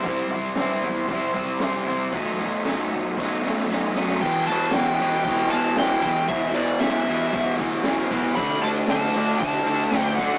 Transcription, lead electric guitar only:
4.21 4.45 G5 loud
4.47 4.73 A5 loud
4.74 5.22 G5 loud
5.24 5.50 G5 medium
5.50 5.77 A5 loud
5.78 6.26 G5 loud
6.29 6.53 E5 medium
6.55 6.79 D5 medium
6.81 7.54 E5 medium
8.35 8.62 B5 loud
8.61 8.68 A5 loud
8.91 9.38 A5 loud
9.39 9.98 A5 loud
9.98 10.15 G5 loud
10.15 10.38 F#5 medium

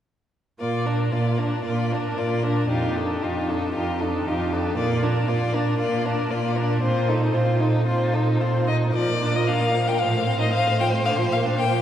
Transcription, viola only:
0.59 0.87 A#3 soft
0.86 1.14 D4 soft
1.12 1.40 A#3 soft
1.39 1.65 D4 soft
1.65 1.93 A#3 soft
1.92 2.19 D4 soft
2.18 2.45 A#3 soft
2.43 2.69 D4 soft
2.70 2.97 D#4 soft
2.95 3.24 D4 soft
3.22 3.50 D#4 soft
3.48 3.74 D4 soft
3.75 4.02 D#4 soft
4.00 4.28 D4 soft
4.26 4.54 D#4 soft
4.52 4.76 D4 soft
4.77 5.05 A#3 soft
5.03 5.30 D4 soft
5.29 5.56 A#3 soft
5.54 5.78 D4 soft
5.79 6.06 A#3 soft
6.05 6.32 D4 soft
6.30 6.58 A#3 soft
6.57 6.82 D4 soft
6.82 7.10 C4 soft
7.09 7.36 D#4 soft
7.34 7.62 C4 soft
7.60 7.87 D#4 soft
7.87 8.15 C4 soft
8.13 8.42 D#4 soft
8.41 8.70 C4 soft
8.68 8.95 D#4 soft
8.95 9.10 F3 soft
9.09 9.24 A#3 soft
9.22 9.36 D4 soft
9.35 9.50 F4 soft
9.48 9.63 D4 soft
9.61 9.76 A#3 soft
9.74 9.89 F3 soft
9.88 10.01 A#3 soft
10.01 10.15 F3 soft
10.14 10.28 A3 soft
10.26 10.41 C4 soft
10.40 10.54 D#4 soft
10.52 10.68 C4 soft
10.67 10.82 A3 soft
10.80 10.94 F3 soft
10.93 11.04 A3 soft
11.05 11.20 D3 soft
11.19 11.33 F3 soft
11.32 11.47 A#3 soft
11.45 11.60 D4 soft
11.58 11.72 A#3 soft
11.71 11.82 F3 soft

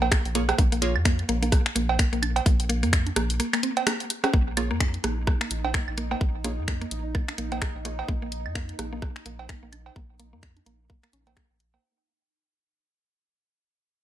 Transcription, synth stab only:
0.35 0.43 A#3 medium
0.35 0.43 F4 medium
0.35 0.43 G#4 medium
0.35 0.43 C#5 medium
0.82 0.94 A#3 medium
0.82 0.94 F4 medium
0.82 0.94 G#4 medium
0.82 0.94 C#5 loud
4.57 4.69 A#3 medium
4.57 4.69 F4 medium
4.57 4.69 G#4 medium
4.57 4.69 C#5 loud
6.44 6.52 A#3 medium
6.44 6.52 F4 medium
6.44 6.52 G#4 medium
6.44 6.52 C#5 medium
7.85 7.93 A#3 medium
7.85 7.93 F4 medium
7.85 7.93 G#4 medium
7.85 7.93 C#5 medium

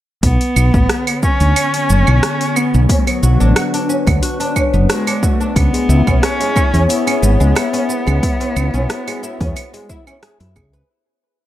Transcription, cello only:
0.23 1.19 B3 loud
1.23 2.57 C#4 loud
2.56 2.89 B3 medium
2.90 4.19 F#3 medium
4.91 5.26 G#3 medium
5.25 5.57 A3 medium
5.58 6.25 B3 loud
6.24 6.89 C#4 loud
6.90 10.19 B3 loud

